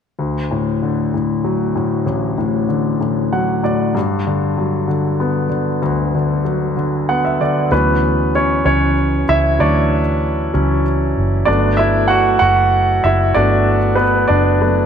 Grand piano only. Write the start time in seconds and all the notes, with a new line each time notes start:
0.19 D2
0.51 A2
0.82 D3
1.14 A2
1.44 F#3
1.75 A2
2.06 A1
2.38 A2
2.69 D3
3.01 A2
3.33 F#3 F#5
3.63 A2 D5
3.95 G2
4.27 D3
4.58 F#3
4.88 D3
5.20 B3
5.50 D3
5.82 D2
6.15 D3
6.45 F#3
6.77 D3
7.09 B3 F#5
7.25 E5
7.41 D3 D5
7.71 E3 F#3 B3 C#4 B4
8.35 C#4 C#5
8.64 E3 F#3 C#4 C#5
9.29 E4 E5
9.58 E3 F#3 D4 C#5 D5
10.54 E3 F#3 C#4
11.45 F#3 A3 B3 D4 D5
11.77 E4 E5
12.08 F#4 F#5
12.39 F#4 F#5
13.04 E4 E5
13.34 F#3 A3 B3 D4 D5
13.95 B3 B4
14.28 D4 D5
14.61 F#3 A3 B3